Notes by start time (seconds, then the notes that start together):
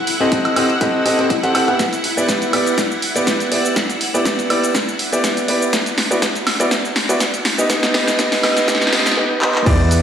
Already playing: E4 F#5
0.07 open hi-hat
0.20 C4 G4 A4 D#5
0.32 kick, closed hi-hat
0.45 closed hi-hat, high woodblock
0.56 C4 G4 A4 D#5, open hi-hat, high woodblock
0.70 closed hi-hat
0.81 C4 G4 A4 D#5, kick, closed hi-hat
1.06 C4 G4 A4 D#5, open hi-hat
1.19 C4 G4 A4 D#5, closed hi-hat
1.30 kick, closed hi-hat
1.43 C4 G4 A4 F#5, closed hi-hat
1.55 C4 G4 A4 F#5, open hi-hat, high woodblock
1.68 B3 E4 G4 F#5, closed hi-hat
1.79 kick, snare, closed hi-hat, shaker
1.93 closed hi-hat, shaker
2.04 open hi-hat
2.17 B3 E4 G4 D5, shaker
2.29 kick, snare, closed hi-hat, shaker
2.42 closed hi-hat, shaker
2.53 B3 E4 G4 D5, open hi-hat, high woodblock
2.66 closed hi-hat, shaker
2.78 kick, snare, closed hi-hat, shaker
2.92 shaker
3.02 open hi-hat
3.15 B3 E4 G4 D5, closed hi-hat, shaker
3.27 kick, snare, closed hi-hat, shaker
3.40 closed hi-hat, shaker
3.52 B3 E4 G4 D5, open hi-hat
3.65 closed hi-hat, shaker
3.76 kick, snare, closed hi-hat, shaker
3.90 closed hi-hat, shaker
4.01 open hi-hat
4.14 B3 E4 G4 D5, shaker
4.25 kick, snare, closed hi-hat, shaker
4.39 closed hi-hat, shaker
4.50 B3 E4 G4 D5, open hi-hat, high woodblock
4.63 closed hi-hat, shaker
4.75 kick, snare, closed hi-hat, shaker
4.88 shaker
4.99 open hi-hat
5.12 B3 E4 G4 D5, closed hi-hat, shaker
5.24 kick, snare, closed hi-hat, shaker
5.37 closed hi-hat, shaker
5.48 B3 E4 G4 D5, open hi-hat
5.62 closed hi-hat, shaker
5.73 kick, snare, closed hi-hat, shaker
5.86 closed hi-hat, shaker
5.98 snare, open hi-hat
6.11 B3 E4 F#4 D5, shaker
6.22 kick, snare, closed hi-hat, shaker
6.35 closed hi-hat, shaker
6.47 snare, open hi-hat, high woodblock
6.60 B3 E4 F#4 D5, closed hi-hat, shaker
6.71 kick, snare, closed hi-hat, shaker
6.85 shaker
6.96 snare, open hi-hat
7.09 B3 E4 F#4 D5, closed hi-hat, shaker
7.20 kick, snare, closed hi-hat, shaker
7.34 closed hi-hat, shaker
7.45 snare, open hi-hat
7.58 B3 D#4 G4 D#5, closed hi-hat, shaker
7.70 B3 D#4 G4 D#5, kick, snare, closed hi-hat, shaker
7.83 snare, closed hi-hat, shaker
7.94 B3 D#4 G4 D#5, snare, open hi-hat
8.07 snare, shaker
8.19 B3 D#4 G4 D#5, kick, snare, closed hi-hat, shaker
8.32 snare, open hi-hat, shaker
8.43 B3 D#4 G4 D#5, snare, open hi-hat, high woodblock
8.57 snare, closed hi-hat, shaker
8.68 B3 D#4 G4 D#5, kick, snare, closed hi-hat, shaker
8.75 snare
8.81 snare, shaker
8.87 snare
8.92 B3 D#4 G4 D#5, snare, open hi-hat
8.99 snare
9.06 snare, closed hi-hat, shaker
9.12 snare
9.17 B3 D#4 G4 D#5
9.42 B3 D#4 G4 D#5, clap
9.55 clap
9.66 E2 B3 E4 G4 D5 F#5, kick, closed hi-hat, crash, shaker
9.91 open hi-hat, shaker